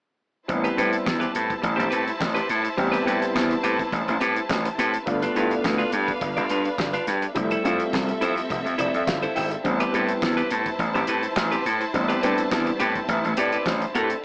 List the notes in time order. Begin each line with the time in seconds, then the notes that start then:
0.48 A1 G3 B3 C4 E4 C5 A5, muted clean electric guitar stroke, kick, closed hi-hat
0.64 C4 G4 B4, closed hi-hat
0.77 A2 G3 C4 E4 G4 B4, closed hi-hat
0.93 closed hi-hat
1.05 E2, muted clean electric guitar stroke, kick, snare, clap
1.20 C4 G4 B4, closed hi-hat
1.33 A2, muted clean electric guitar stroke, closed hi-hat
1.49 muted clean electric guitar stroke, kick, closed hi-hat
1.62 A1, muted clean electric guitar stroke, kick, closed hi-hat
1.76 A1 C4 G4 C5, closed hi-hat
1.90 A2 C4 G4 B4, closed hi-hat
2.06 muted clean electric guitar stroke, closed hi-hat
2.20 A1, muted clean electric guitar stroke, kick, snare, clap
2.35 C4 G4 B4, closed hi-hat
2.49 A2, muted clean electric guitar stroke, closed hi-hat
2.63 muted clean electric guitar stroke, closed hi-hat
2.77 A1 G3 B3 C4 G4, muted clean electric guitar stroke, kick, closed hi-hat
2.92 C4 G4 B4, closed hi-hat
3.05 A2 G3 C4 E4 G4 B4, closed hi-hat
3.21 muted clean electric guitar stroke, closed hi-hat
3.35 E2, muted clean electric guitar stroke, kick, snare, clap
3.50 muted clean electric guitar stroke, closed hi-hat
3.63 A2 C4 G4 B4, closed hi-hat
3.79 muted clean electric guitar stroke, kick, closed hi-hat
3.92 A1, muted clean electric guitar stroke, kick, closed hi-hat
4.08 A1, muted clean electric guitar stroke, closed hi-hat
4.21 A2 C4 G4 B4, closed hi-hat
4.36 muted clean electric guitar stroke, closed hi-hat
4.50 A1, kick, snare, clap
4.65 muted clean electric guitar stroke, closed hi-hat
4.78 A2 C4 G4 B4, closed hi-hat
4.94 muted clean electric guitar stroke, closed hi-hat
5.06 G1 A3 B3 D4 F4 B4 F5, muted clean electric guitar stroke, kick, closed hi-hat
5.22 D4 F4 B4, closed hi-hat
5.35 G2 A3 B3 D4 E4 F4 B4, closed hi-hat
5.43 F4
5.51 muted clean electric guitar stroke, closed hi-hat
5.64 D2, muted clean electric guitar stroke, kick, snare, clap
5.78 D4 F4 B4, closed hi-hat
5.92 G2, muted clean electric guitar stroke, closed hi-hat
6.08 muted clean electric guitar stroke, kick, closed hi-hat
6.21 G1, muted clean electric guitar stroke, kick, closed hi-hat
6.37 G1 D4 F4 D5, closed hi-hat
6.49 G2 D4 F4 B4, closed hi-hat
6.65 muted clean electric guitar stroke, closed hi-hat
6.78 G1, muted clean electric guitar stroke, kick, snare, clap
6.93 D4 F4 B4, closed hi-hat
7.07 G2, muted clean electric guitar stroke, snare, closed hi-hat
7.22 muted clean electric guitar stroke, closed hi-hat
7.35 F1 G3 A3 C4 E4 A4 E5, muted clean electric guitar stroke, kick, closed hi-hat
7.51 E4 A4 C5, closed hi-hat
7.64 F2 G3 A3 C4 E4 F4 A4 C5, closed hi-hat
7.80 muted clean electric guitar stroke, closed hi-hat
7.93 C2, muted clean electric guitar stroke, kick, snare, clap
8.08 muted clean electric guitar stroke, closed hi-hat
8.21 F2 E4 A4 C5, closed hi-hat
8.36 muted clean electric guitar stroke, closed hi-hat
8.49 F1, muted clean electric guitar stroke, kick, closed hi-hat
8.65 F2, muted clean electric guitar stroke, closed hi-hat
8.78 F1 E4 A4 C5 D5, closed hi-hat
8.94 F2 E5, muted clean electric guitar stroke, closed hi-hat
9.07 G1 F5, muted clean electric guitar stroke, kick, snare, clap
9.22 E4 A4 C5, closed hi-hat
9.35 G#1 E4 A4 C5 G5, snare, open hi-hat
9.51 muted clean electric guitar stroke, closed hi-hat
9.64 A1 G3 B3 C4 E4 C5 A5, muted clean electric guitar stroke, kick, closed hi-hat
9.80 C4 G4 B4, closed hi-hat
9.92 A2 G3 C4 E4 G4 B4, closed hi-hat
10.08 muted clean electric guitar stroke, closed hi-hat
10.22 E2, muted clean electric guitar stroke, kick, snare, clap
10.37 C4 G4 B4, closed hi-hat
10.50 A2, muted clean electric guitar stroke, closed hi-hat
10.66 muted clean electric guitar stroke, kick, closed hi-hat
10.79 A1, muted clean electric guitar stroke, kick, closed hi-hat
10.94 A1 C4 G4 C5, closed hi-hat
11.07 A2 C4 G4 B4, closed hi-hat
11.23 muted clean electric guitar stroke, closed hi-hat
11.36 A1, muted clean electric guitar stroke, kick, snare, clap
11.51 C4 G4 B4, closed hi-hat
11.65 A2, muted clean electric guitar stroke, closed hi-hat
11.81 muted clean electric guitar stroke, closed hi-hat
11.94 A1 G3 B3 C4 E4, muted clean electric guitar stroke, kick, closed hi-hat
12.08 C4 G4 B4, closed hi-hat
12.22 A2 G3 C4 D4 G4 B4, closed hi-hat
12.38 muted clean electric guitar stroke, closed hi-hat
12.51 E2, muted clean electric guitar stroke, kick, snare, clap
12.66 muted clean electric guitar stroke, closed hi-hat
12.80 A2 C4 G4 B4 G5, closed hi-hat
12.95 muted clean electric guitar stroke, kick, closed hi-hat
13.09 A1 E5, muted clean electric guitar stroke, kick, closed hi-hat
13.24 A1, muted clean electric guitar stroke, closed hi-hat
13.37 A2 C4 G4 B4 D5, closed hi-hat
13.52 C4 G4 B4, closed hi-hat
13.66 A1 C5, kick, snare, clap
13.81 muted clean electric guitar stroke, closed hi-hat
13.95 A2 C4 G4 A4 B4, closed hi-hat
14.10 muted clean electric guitar stroke, closed hi-hat